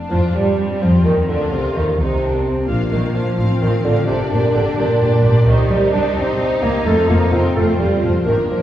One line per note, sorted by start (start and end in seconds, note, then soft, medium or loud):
0.00 0.54 D4 medium
0.10 0.19 F2 medium
0.10 0.21 F3 medium
0.10 0.18 F3 medium
0.10 0.33 F3 medium
0.10 0.22 F3 medium
0.10 0.33 F4 medium
0.33 0.80 G2 medium
0.33 0.81 G3 medium
0.33 0.80 G3 medium
0.33 0.81 G3 medium
0.33 0.80 G3 medium
0.58 1.28 C4 soft
0.81 1.05 F2 medium
0.81 1.05 F3 medium
0.81 0.90 F3 medium
0.81 0.92 F3 medium
0.81 1.04 F4 medium
1.04 1.12 D#2 medium
1.04 1.27 D#3 medium
1.04 1.15 D#3 medium
1.04 1.28 D#3 medium
1.04 1.12 D#4 medium
1.28 1.51 D2 medium
1.28 1.51 D3 medium
1.28 1.54 D3 medium
1.28 1.52 D3 medium
1.28 1.39 D3 medium
1.28 1.51 D4 medium
1.28 1.97 F4 medium
1.50 1.59 C2 soft
1.50 1.74 C3 medium
1.50 1.75 C3 medium
1.50 1.75 C3 soft
1.50 1.75 C4 medium
1.74 1.98 D#2 medium
1.74 1.98 D#3 medium
1.74 1.86 D#3 medium
1.74 1.84 D#4 medium
1.97 2.68 C2 medium
1.97 2.67 C3 medium
1.97 2.67 C3 soft
1.97 2.69 C3 soft
1.97 2.68 C3 medium
1.97 2.67 C4 medium
1.97 2.23 D#4 medium
2.24 2.46 D4 soft
2.44 2.68 C4 soft
2.67 2.75 A#1 medium
2.67 3.37 A#3 medium
2.67 2.90 D4 soft
2.67 3.35 D4 soft
2.67 2.90 F4 soft
2.67 4.04 F4 medium
2.67 2.90 F5 soft
2.91 2.99 A#1 soft
2.91 3.17 D#3 medium
2.91 3.01 D#3 medium
2.91 3.14 D4 soft
2.91 3.13 F4 soft
2.91 3.13 F5 soft
3.14 3.23 A#1 soft
3.14 3.61 F3 medium
3.14 3.61 F3 soft
3.14 3.38 D4 soft
3.14 3.37 F4 soft
3.14 3.37 F5 soft
3.38 3.46 A1 medium
3.38 3.59 C4 soft
3.38 4.07 C4 medium
3.38 4.08 C4 soft
3.38 3.60 F4 soft
3.38 3.61 F5 soft
3.61 3.69 A1 soft
3.61 3.85 D#3 medium
3.61 3.72 D#3 medium
3.61 3.84 C4 soft
3.61 3.84 F4 soft
3.61 3.85 F5 soft
3.85 3.93 A1 medium
3.85 3.95 D3 medium
3.85 4.08 D3 medium
3.85 4.07 C4 soft
3.85 4.07 F4 soft
3.85 4.08 F5 soft
4.07 4.16 G1 medium
4.07 4.18 C3 medium
4.07 4.31 C3 medium
4.07 5.44 D4 medium
4.07 5.46 D4 medium
4.07 4.30 D4 soft
4.07 6.86 G4 medium
4.07 4.30 G4 soft
4.07 4.31 D5 medium
4.31 4.39 G1 medium
4.31 4.54 A#2 medium
4.31 4.55 A#2 medium
4.31 4.53 D4 soft
4.31 4.52 G4 soft
4.31 4.53 D5 soft
4.53 4.62 G1 soft
4.53 4.65 D3 medium
4.53 4.77 D3 medium
4.53 4.75 D4 soft
4.53 4.76 G4 soft
4.53 4.77 D5 soft
4.77 4.86 G1 medium
4.77 5.47 A#2 medium
4.77 5.46 A#2 medium
4.77 5.00 D4 soft
4.77 4.99 G4 medium
4.77 5.01 D5 soft
5.00 5.08 G1 soft
5.00 5.23 D4 soft
5.00 5.22 G4 soft
5.00 5.24 D5 soft
5.23 5.31 G1 medium
5.23 5.46 D4 soft
5.23 5.46 G4 soft
5.23 5.47 D5 medium
5.46 5.54 C2 medium
5.46 5.70 D#3 medium
5.46 5.58 D#3 medium
5.46 7.52 D#4 medium
5.46 5.70 D#4 medium
5.46 6.84 D#4 medium
5.46 5.69 G4 medium
5.46 5.70 C5 medium
5.69 5.77 C2 medium
5.69 5.93 G3 medium
5.69 5.93 D#4 soft
5.69 5.93 G4 soft
5.69 5.93 C5 soft
5.92 6.00 C2 medium
5.92 6.16 D4 medium
5.92 6.04 D4 medium
5.92 6.16 D#4 medium
5.92 6.16 G4 soft
5.92 6.16 C5 soft
6.16 6.24 C2 medium
6.16 6.62 C4 medium
6.16 6.63 C4 medium
6.16 6.39 D#4 soft
6.16 6.39 G4 soft
6.16 6.38 C5 medium
6.39 6.47 C2 soft
6.39 6.62 D#4 soft
6.39 6.62 G4 soft
6.39 6.61 C5 soft
6.62 6.70 C2 medium
6.62 6.85 A#3 medium
6.62 6.71 A#3 medium
6.62 6.86 D#4 soft
6.62 6.86 G4 soft
6.62 6.85 C5 soft
6.85 6.93 F1 medium
6.85 6.93 A3 medium
6.85 7.09 A3 medium
6.85 8.23 C4 medium
6.85 7.08 F4 medium
6.85 8.26 F4 medium
6.85 7.09 C5 medium
7.08 7.16 F1 medium
7.08 7.17 A#3 medium
7.08 7.34 A#3 medium
7.08 7.31 F4 soft
7.08 7.32 C5 soft
7.32 7.40 F1 medium
7.32 7.56 C4 medium
7.32 7.54 F4 soft
7.32 7.56 C5 soft
7.55 7.63 F1 medium
7.55 7.67 A3 medium
7.55 7.79 A3 medium
7.55 8.26 C4 medium
7.55 7.78 F4 soft
7.55 7.79 C5 soft
7.78 7.86 F1 soft
7.78 8.02 G3 medium
7.78 8.00 F4 soft
7.78 8.01 C5 soft
8.02 8.10 F1 medium
8.02 8.26 F3 medium
8.02 8.13 F3 medium
8.02 8.25 F4 soft
8.02 8.25 C5 soft
8.25 8.33 G1 medium
8.25 8.34 D#3 medium
8.25 8.38 D#3 medium
8.25 8.62 A#3 medium
8.25 8.47 D4 soft
8.25 8.62 D4 soft
8.25 8.47 A#4 soft
8.25 8.62 A#4 soft
8.25 8.49 A#4 soft
8.48 8.57 G1 soft
8.48 8.57 F3 medium
8.48 8.61 F3 medium
8.48 8.62 D4 soft
8.48 8.62 A#4 soft